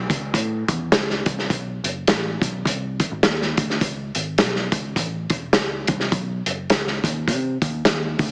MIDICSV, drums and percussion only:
0, 0, Header, 1, 2, 480
1, 0, Start_track
1, 0, Tempo, 577478
1, 1246, Time_signature, 4, 2, 24, 8
1, 6910, End_track
2, 0, Start_track
2, 0, Title_t, "Drums"
2, 82, Note_on_c, 9, 36, 82
2, 87, Note_on_c, 9, 42, 75
2, 165, Note_off_c, 9, 36, 0
2, 170, Note_off_c, 9, 42, 0
2, 282, Note_on_c, 9, 36, 79
2, 288, Note_on_c, 9, 42, 88
2, 365, Note_off_c, 9, 36, 0
2, 371, Note_off_c, 9, 42, 0
2, 569, Note_on_c, 9, 36, 94
2, 569, Note_on_c, 9, 42, 70
2, 652, Note_off_c, 9, 36, 0
2, 652, Note_off_c, 9, 42, 0
2, 765, Note_on_c, 9, 38, 121
2, 766, Note_on_c, 9, 42, 81
2, 848, Note_off_c, 9, 38, 0
2, 849, Note_off_c, 9, 42, 0
2, 915, Note_on_c, 9, 38, 34
2, 998, Note_off_c, 9, 38, 0
2, 1047, Note_on_c, 9, 42, 75
2, 1049, Note_on_c, 9, 36, 93
2, 1130, Note_off_c, 9, 42, 0
2, 1132, Note_off_c, 9, 36, 0
2, 1154, Note_on_c, 9, 38, 34
2, 1237, Note_off_c, 9, 38, 0
2, 1248, Note_on_c, 9, 36, 94
2, 1252, Note_on_c, 9, 42, 71
2, 1331, Note_off_c, 9, 36, 0
2, 1335, Note_off_c, 9, 42, 0
2, 1533, Note_on_c, 9, 42, 69
2, 1616, Note_off_c, 9, 42, 0
2, 1725, Note_on_c, 9, 42, 93
2, 1729, Note_on_c, 9, 38, 102
2, 1808, Note_off_c, 9, 42, 0
2, 1812, Note_off_c, 9, 38, 0
2, 2008, Note_on_c, 9, 36, 87
2, 2018, Note_on_c, 9, 42, 66
2, 2091, Note_off_c, 9, 36, 0
2, 2101, Note_off_c, 9, 42, 0
2, 2207, Note_on_c, 9, 36, 80
2, 2218, Note_on_c, 9, 42, 86
2, 2290, Note_off_c, 9, 36, 0
2, 2301, Note_off_c, 9, 42, 0
2, 2491, Note_on_c, 9, 42, 78
2, 2493, Note_on_c, 9, 36, 86
2, 2574, Note_off_c, 9, 42, 0
2, 2576, Note_off_c, 9, 36, 0
2, 2685, Note_on_c, 9, 38, 120
2, 2687, Note_on_c, 9, 42, 86
2, 2768, Note_off_c, 9, 38, 0
2, 2770, Note_off_c, 9, 42, 0
2, 2841, Note_on_c, 9, 38, 35
2, 2924, Note_off_c, 9, 38, 0
2, 2971, Note_on_c, 9, 42, 71
2, 2974, Note_on_c, 9, 36, 93
2, 3054, Note_off_c, 9, 42, 0
2, 3057, Note_off_c, 9, 36, 0
2, 3076, Note_on_c, 9, 38, 35
2, 3159, Note_off_c, 9, 38, 0
2, 3169, Note_on_c, 9, 36, 101
2, 3171, Note_on_c, 9, 42, 76
2, 3252, Note_off_c, 9, 36, 0
2, 3254, Note_off_c, 9, 42, 0
2, 3448, Note_on_c, 9, 42, 68
2, 3531, Note_off_c, 9, 42, 0
2, 3640, Note_on_c, 9, 42, 86
2, 3645, Note_on_c, 9, 38, 98
2, 3724, Note_off_c, 9, 42, 0
2, 3728, Note_off_c, 9, 38, 0
2, 3788, Note_on_c, 9, 38, 34
2, 3871, Note_off_c, 9, 38, 0
2, 3923, Note_on_c, 9, 42, 70
2, 3924, Note_on_c, 9, 36, 89
2, 4006, Note_off_c, 9, 42, 0
2, 4007, Note_off_c, 9, 36, 0
2, 4124, Note_on_c, 9, 36, 85
2, 4127, Note_on_c, 9, 42, 85
2, 4207, Note_off_c, 9, 36, 0
2, 4210, Note_off_c, 9, 42, 0
2, 4403, Note_on_c, 9, 42, 74
2, 4408, Note_on_c, 9, 36, 96
2, 4486, Note_off_c, 9, 42, 0
2, 4491, Note_off_c, 9, 36, 0
2, 4596, Note_on_c, 9, 38, 108
2, 4598, Note_on_c, 9, 42, 78
2, 4679, Note_off_c, 9, 38, 0
2, 4681, Note_off_c, 9, 42, 0
2, 4883, Note_on_c, 9, 42, 67
2, 4890, Note_on_c, 9, 36, 95
2, 4966, Note_off_c, 9, 42, 0
2, 4973, Note_off_c, 9, 36, 0
2, 4986, Note_on_c, 9, 38, 36
2, 5069, Note_off_c, 9, 38, 0
2, 5087, Note_on_c, 9, 36, 101
2, 5088, Note_on_c, 9, 42, 74
2, 5170, Note_off_c, 9, 36, 0
2, 5171, Note_off_c, 9, 42, 0
2, 5372, Note_on_c, 9, 42, 73
2, 5455, Note_off_c, 9, 42, 0
2, 5567, Note_on_c, 9, 42, 95
2, 5571, Note_on_c, 9, 38, 104
2, 5650, Note_off_c, 9, 42, 0
2, 5654, Note_off_c, 9, 38, 0
2, 5712, Note_on_c, 9, 38, 33
2, 5795, Note_off_c, 9, 38, 0
2, 5849, Note_on_c, 9, 36, 86
2, 5857, Note_on_c, 9, 42, 80
2, 5932, Note_off_c, 9, 36, 0
2, 5940, Note_off_c, 9, 42, 0
2, 6048, Note_on_c, 9, 36, 87
2, 6055, Note_on_c, 9, 42, 85
2, 6131, Note_off_c, 9, 36, 0
2, 6138, Note_off_c, 9, 42, 0
2, 6332, Note_on_c, 9, 36, 90
2, 6332, Note_on_c, 9, 42, 68
2, 6415, Note_off_c, 9, 36, 0
2, 6415, Note_off_c, 9, 42, 0
2, 6526, Note_on_c, 9, 38, 108
2, 6527, Note_on_c, 9, 42, 83
2, 6609, Note_off_c, 9, 38, 0
2, 6610, Note_off_c, 9, 42, 0
2, 6807, Note_on_c, 9, 46, 49
2, 6810, Note_on_c, 9, 36, 82
2, 6890, Note_off_c, 9, 46, 0
2, 6893, Note_off_c, 9, 36, 0
2, 6910, End_track
0, 0, End_of_file